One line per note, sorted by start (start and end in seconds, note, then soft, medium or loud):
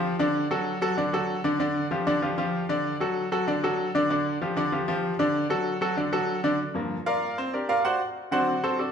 0.00 0.14 F3 medium
0.00 0.14 F4 medium
0.00 0.14 G4 medium
0.19 0.45 D3 medium
0.19 0.45 D4 medium
0.19 0.45 D5 medium
0.51 0.76 F#3 medium
0.51 0.76 F#4 medium
0.51 0.77 A4 medium
0.82 0.95 F#3 medium
0.82 0.95 F#4 medium
0.82 0.95 A4 medium
0.97 1.10 D3 medium
0.97 1.10 D4 medium
0.97 1.11 D5 medium
1.13 1.39 F#3 medium
1.13 1.39 F#4 medium
1.13 1.39 A4 medium
1.44 1.57 D3 medium
1.44 1.57 D4 medium
1.44 1.57 D5 medium
1.60 1.85 D3 medium
1.60 1.85 D4 medium
1.60 1.86 D5 medium
1.91 2.04 F3 medium
1.91 2.04 F4 medium
1.91 2.04 G4 medium
2.07 2.20 D3 medium
2.07 2.20 D4 medium
2.07 2.20 D5 medium
2.22 2.35 F3 medium
2.22 2.35 F4 medium
2.22 2.35 G4 medium
2.38 2.63 F3 medium
2.38 2.64 F4 medium
2.38 2.64 G4 medium
2.69 2.95 D3 medium
2.69 2.95 D4 medium
2.69 2.95 D5 medium
3.00 3.26 F#3 medium
3.00 3.26 F#4 medium
3.00 3.26 A4 medium
3.32 3.45 F#3 medium
3.32 3.45 F#4 medium
3.32 3.45 A4 medium
3.47 3.60 D3 medium
3.47 3.60 D4 medium
3.47 3.60 D5 medium
3.63 3.89 F#3 medium
3.63 3.89 F#4 medium
3.63 3.89 A4 medium
3.95 4.07 D3 medium
3.95 4.07 D4 medium
3.95 4.08 D5 medium
4.10 4.36 D3 medium
4.10 4.36 D4 medium
4.10 4.36 D5 medium
4.41 4.54 F3 medium
4.41 4.54 F4 medium
4.41 4.54 G4 medium
4.57 4.69 D3 medium
4.57 4.70 D4 medium
4.57 4.70 D5 medium
4.72 4.85 F3 medium
4.72 4.85 F4 medium
4.72 4.85 G4 medium
4.88 5.14 F3 medium
4.88 5.14 F4 medium
4.88 5.14 G4 medium
5.19 5.45 D3 medium
5.19 5.45 D4 medium
5.19 5.45 D5 medium
5.50 5.76 F#3 medium
5.50 5.76 F#4 medium
5.50 5.76 A4 medium
5.81 5.94 F#3 medium
5.81 5.94 F#4 medium
5.81 5.95 A4 medium
5.97 6.10 D3 medium
5.97 6.10 D4 medium
5.97 6.10 D5 medium
6.12 6.38 F#3 medium
6.12 6.38 F#4 medium
6.12 6.38 A4 medium
6.44 6.57 D3 medium
6.44 6.57 D4 medium
6.44 6.57 D5 medium
6.74 6.96 G2 medium
6.74 6.96 F3 medium
6.74 6.96 A#3 medium
7.06 7.36 F4 medium
7.06 7.36 A#4 medium
7.06 7.36 D5 medium
7.06 7.35 F5 medium
7.38 7.53 C4 medium
7.38 7.53 C5 medium
7.53 7.69 D4 medium
7.53 7.69 G4 medium
7.53 7.68 A#4 medium
7.53 7.68 D5 medium
7.69 7.84 F4 medium
7.69 7.84 A#4 medium
7.69 7.84 D5 medium
7.69 7.79 F5 medium
7.80 7.83 F5 medium
7.85 8.00 F#4 medium
7.85 8.00 C5 medium
7.85 8.00 D5 medium
7.85 8.00 F#5 medium
8.31 8.52 D3 medium
8.31 8.53 F#3 medium
8.31 8.53 C4 medium
8.31 8.61 F#4 medium
8.31 8.61 C5 medium
8.31 8.61 D5 medium
8.31 8.61 F#5 medium
8.63 8.78 C4 medium
8.63 8.78 F#4 medium
8.63 8.78 A4 medium
8.63 8.78 C5 medium
8.79 8.92 D4 medium
8.79 8.92 F#4 medium
8.79 8.92 A4 medium
8.79 8.92 D5 medium